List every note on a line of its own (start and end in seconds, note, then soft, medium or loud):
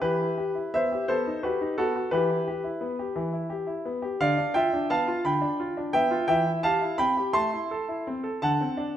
0.02 0.19 E3 medium
0.02 0.36 G4 medium
0.02 0.73 B4 medium
0.21 0.39 E4 soft
0.38 0.57 G4 soft
0.55 0.74 E4 soft
0.74 0.92 B3 soft
0.74 1.07 C5 medium
0.74 1.09 E5 medium
0.92 1.09 G4 soft
1.08 1.26 B3 medium
1.08 1.42 A4 medium
1.08 1.43 C5 medium
1.27 1.45 D#4 soft
1.43 1.62 F#4 soft
1.43 1.76 G4 medium
1.43 1.78 B4 medium
1.61 1.79 D#4 soft
1.78 1.96 B3 soft
1.78 1.94 F#4 medium
1.78 2.12 A4 medium
1.96 2.13 F#4 soft
2.11 2.29 E3 medium
2.11 2.46 G4 medium
2.11 3.50 B4 medium
2.30 2.48 E4 soft
2.48 2.66 G4 soft
2.64 2.82 E4 soft
2.81 2.99 B3 soft
2.99 3.17 G4 soft
3.16 3.33 E3 medium
3.33 3.51 E4 soft
3.50 3.68 G4 soft
3.67 3.85 E4 soft
3.85 4.04 B3 soft
4.02 4.20 G4 medium
4.20 4.37 D3 medium
4.20 4.53 D5 medium
4.20 4.51 F5 loud
4.38 4.56 D4 soft
4.54 4.73 F4 medium
4.54 4.87 E5 medium
4.54 4.89 G5 loud
4.73 4.91 D4 soft
4.90 5.08 B3 soft
4.90 5.22 F5 medium
4.90 5.21 A5 medium
5.08 5.25 F4 medium
5.25 5.41 D3 medium
5.25 5.91 G5 medium
5.25 5.94 B5 medium
5.42 5.60 D4 medium
5.60 5.77 F4 medium
5.77 5.95 D4 soft
5.93 6.12 B3 medium
5.93 6.27 E5 medium
5.93 6.26 G5 loud
6.11 6.29 F4 medium
6.28 6.46 E3 medium
6.28 6.62 E5 medium
6.28 6.49 G5 loud
6.46 6.65 E4 medium
6.63 6.82 G4 medium
6.63 6.97 F5 medium
6.63 6.99 A5 loud
6.81 7.00 E4 medium
6.98 7.18 C4 medium
6.98 7.32 G5 medium
6.98 7.20 B5 loud
7.17 7.35 G4 medium
7.33 7.51 A3 medium
7.33 8.37 A5 medium
7.33 8.41 C6 loud
7.53 7.71 E4 soft
7.71 7.89 A4 medium
7.89 8.07 E4 soft
8.07 8.25 C4 medium
8.24 8.41 A4 medium
8.42 8.59 D3 medium
8.42 8.97 F#5 medium
8.42 8.97 A5 loud
8.61 8.79 C4 medium
8.77 8.96 D4 medium